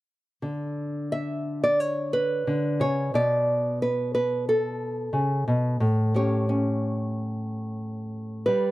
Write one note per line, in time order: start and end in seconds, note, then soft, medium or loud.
0.42 2.46 D3 medium
1.12 1.63 E5 medium
1.64 1.80 D5 medium
1.80 2.80 C#5 medium
2.13 3.14 B4 medium
2.47 2.81 D3 medium
2.80 3.14 C#3 medium
2.80 3.14 C#5 medium
3.14 5.12 B2 medium
3.14 3.81 D5 medium
3.82 4.13 B4 medium
4.15 4.48 B4 medium
4.49 5.81 A4 medium
5.13 5.47 C#3 medium
5.48 5.80 B2 medium
5.80 8.47 A2 medium
6.14 6.48 C#4 medium
6.14 8.44 G4 medium
6.14 8.44 C#5 medium
6.49 8.44 C#4 medium
8.46 8.71 G3 medium
8.46 8.71 B4 medium